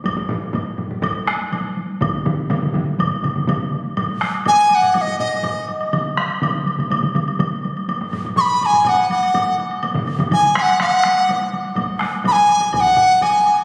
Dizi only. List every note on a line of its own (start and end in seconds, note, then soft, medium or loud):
4.48 4.71 G#5 medium
4.71 4.97 F#5 medium
4.71 4.76 G#5 medium
4.97 5.02 F#5 medium
5.01 5.19 D#5 medium
5.19 5.65 D#5 medium
8.37 8.62 B5 medium
8.37 8.42 C#6 medium
8.62 8.85 G#5 medium
8.62 8.67 B5 medium
8.85 8.90 G#5 medium
8.89 9.09 F#5 medium
9.11 9.56 F#5 medium
10.33 10.55 G#5 medium
10.57 10.63 G#5 medium
10.62 10.79 F#5 medium
10.81 11.49 F#5 medium
12.27 12.33 B5 medium
12.32 12.71 G#5 medium
12.75 12.81 G#5 medium
12.80 13.24 F#5 medium
13.22 13.58 G#5 medium